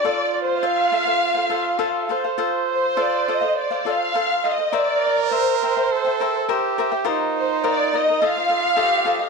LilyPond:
<<
  \new Staff \with { instrumentName = "Violin section" } { \time 4/4 \key f \mixolydian \tempo 4 = 103 \tuplet 3/2 { d''4 c''8 } f''2~ f''8 r8 | r8 c''8 d''8 ees''8 d''8 f''4 ees''8 | d''4 c''2~ c''8 r8 | r8 c''8 d''8 ees''8 f''2 | }
  \new Staff \with { instrumentName = "Cavaquinho" } { \time 4/4 \key f \mixolydian <f' a' c'' f''>4 <f' a' c'' f''>8 <f' a' c'' f''>16 <a' c'' f''>8 <a' c'' f''>16 <f' a' c'' f''>8 <f' a' c'' f''>8 <f' a' c'' f''>16 <a' c'' f''>16 | <f' a' c'' f''>4 <f' a' c'' f''>8 <f' a' c'' f''>16 <a' c'' f''>8 <a' c'' f''>16 <f' a' c'' f''>8 <f' a' c'' f''>8 <f' a' c'' f''>16 <a' c'' f''>16 | <bes' c'' e'' g''>4 <bes' c'' e'' g''>8 <bes' c'' e'' g''>16 <c'' e'' g''>8 <c'' e'' g''>16 <bes' c'' e'' g''>8 <bes' c'' e'' g''>8 <bes' c'' e'' g''>16 <c'' e'' g''>16 | <f' bes' c'' ees''>4 <f' bes' c'' ees''>8 <f' bes' c'' ees''>16 <bes' c'' ees''>16 <f' a' c'' ees''>16 <a' c'' ees''>16 <f' a' c'' ees''>8 <f' a' c'' ees''>8 <f' a' c'' ees''>16 <a' c'' ees''>16 | }
  \new Staff \with { instrumentName = "Trumpet" } { \time 4/4 \key f \mixolydian f'2. a'8 c''8~ | c''2.~ c''8 r8 | bes'2 a'4 g'4 | ees'2 f'4 g'4 | }
>>